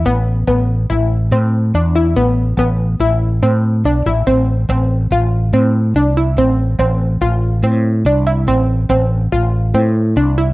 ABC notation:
X:1
M:5/4
L:1/8
Q:1/4=142
K:Flyd
V:1 name="Synth arpeggio sound"
B,2 B,2 E2 C2 D E | B,2 B,2 E2 C2 D E | C2 C2 F2 C2 D E | C2 C2 F2 C2 D E |
C2 C2 F2 C2 D E |]
V:2 name="Fretless electric bass" clef=bass
A,,,2 A,,,2 A,,,2 A,,2 E,,2 | A,,,2 A,,,2 A,,,2 A,,2 B,,, A,,, | A,,,2 A,,,2 A,,,2 A,,2 C,,2 | A,,,2 A,,,2 A,,,2 A,,2 C,,2 |
A,,,2 A,,,2 A,,,2 A,,2 C,,2 |]